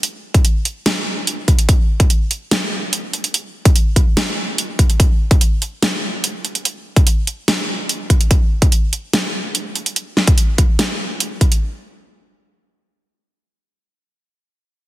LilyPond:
\new DrumStaff \with { instrumentName = "Drums" } \drummode { \time 4/4 \tempo 4 = 145 hh8. <hh bd>16 hh8 hh8 <hh sn>4 hh8 <hh bd>16 hh16 | <hh bd>8. <hh bd>16 hh8 hh8 <hh sn>4 hh8 hh16 hh16 | hh8. <hh bd>16 hh8 <hh bd>8 <hh sn>4 hh8 <hh bd>16 hh16 | <hh bd>8. <hh bd>16 hh8 hh8 <hh sn>4 hh8 hh16 hh16 |
hh8. <hh bd>16 hh8 hh8 <hh sn>4 hh8 <hh bd>16 hh16 | <hh bd>8. <hh bd>16 hh8 hh8 <hh sn>4 hh8 hh16 hh16 | hh8 sn16 <hh bd>16 hh8 <hh bd>8 <hh sn>4 hh8 <hh bd>16 hh16 | r4 r4 r4 r4 |
r4 r4 r4 r4 | }